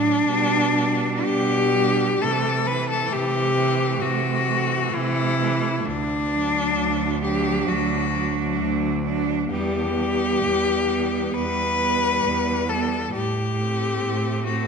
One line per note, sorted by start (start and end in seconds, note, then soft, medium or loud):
0.00 0.15 A2 medium
0.00 0.25 F#3 medium
0.00 0.26 D4 medium
0.00 1.27 D4 loud
0.26 1.13 B2 medium
0.26 0.74 G3 medium
0.26 0.74 D4 medium
0.75 1.72 G3 medium
0.75 1.72 D4 medium
1.25 2.10 B2 medium
1.25 2.23 G4 loud
1.74 2.20 G3 medium
1.74 2.20 D4 medium
2.21 3.00 C3 medium
2.21 2.66 E3 medium
2.21 2.64 A3 medium
2.21 2.68 A4 loud
2.65 3.54 E3 medium
2.65 3.53 A3 medium
2.65 2.89 B4 loud
2.90 3.14 A4 medium
3.11 3.90 C3 medium
3.11 4.03 G4 loud
3.56 4.45 E3 medium
3.56 4.46 A3 medium
4.02 4.82 C3 medium
4.02 4.96 F#4 medium
4.48 5.37 E3 medium
4.48 5.38 A3 medium
4.94 5.74 C3 medium
4.94 5.87 E4 loud
5.40 5.84 E3 medium
5.40 5.84 A3 medium
5.86 6.67 D2 medium
5.86 7.23 D4 loud
6.31 7.21 F#3 medium
6.31 7.20 D4 medium
6.79 7.58 D2 medium
7.23 8.11 F#3 medium
7.23 8.11 D4 medium
7.23 7.70 G4 medium
7.68 8.48 D2 medium
7.68 8.59 F#4 medium
8.13 9.02 F#3 medium
8.13 9.02 D4 medium
8.60 9.39 D2 medium
9.04 9.49 F#3 medium
9.04 9.49 D4 medium
9.51 10.31 E2 medium
9.51 9.95 G3 medium
9.51 9.95 B3 medium
9.51 11.35 G4 loud
9.97 10.86 G3 medium
9.97 10.86 B3 medium
10.43 11.22 E2 medium
10.88 11.77 G3 medium
10.88 11.78 B3 medium
11.34 12.14 E2 medium
11.34 12.71 B4 loud
11.80 12.68 G3 medium
11.80 12.68 B3 medium
12.25 13.03 E2 medium
12.69 13.13 G3 soft
12.69 13.13 B3 medium
12.69 13.13 A4 medium
13.14 13.92 A2 medium
13.14 14.43 G4 medium
13.58 14.44 A3 medium
13.58 14.45 C4 medium
14.03 14.67 A2 medium
14.46 14.67 A3 medium
14.46 14.67 C4 soft
14.46 14.67 F#4 medium